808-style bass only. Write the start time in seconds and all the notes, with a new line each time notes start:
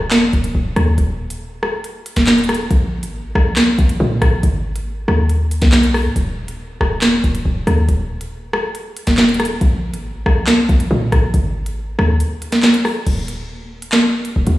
Already playing: D#1
0.33 D#1
0.55 D#1
0.76 D#2
0.98 D#1
2.17 D#1
2.71 A#1
3.03 G#1
3.35 A#1
3.78 A#1
4.00 A#2
4.22 A#1
4.43 G#1
5.08 D#2
5.62 B1
6.05 G#2
6.16 D#1
6.81 D#1
7.24 D#1
7.45 D#1
7.67 D#2
7.89 D#1
9.07 D#1
9.61 A#1
9.94 G#1
10.26 A#1
10.69 A#1
10.91 A#2
11.12 A#1
11.34 G#1
11.99 D#2
13.07 D#1
14.36 D#1
14.47 D#2